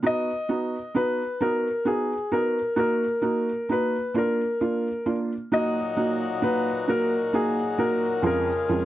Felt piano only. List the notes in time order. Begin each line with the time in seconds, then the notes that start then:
0.03 B3 D#4 F#4
0.49 B3 D#4 F#4
0.94 B3 D#4 F#4
1.41 B3 D#4 F#4
1.85 B3 D#4 F#4
2.32 B3 D#4 F#4
2.76 A#3 D#4 F#4
3.22 A#3 D#4 F#4
3.69 A#3 D#4 F#4
4.14 A#3 D4 F4
4.61 A#3 D4 F4
5.06 A#3 D4 F4
5.52 A#3 D#4 F#4
5.97 A#3 D#4 F#4
6.42 A#3 D#4 F#4
6.88 A#3 D#4 F#4
7.33 A#3 D#4 F#4
7.78 A#3 D#4 F#4
8.22 F2 G#3 C#4 F4
8.69 F2 G#3 C#4 F4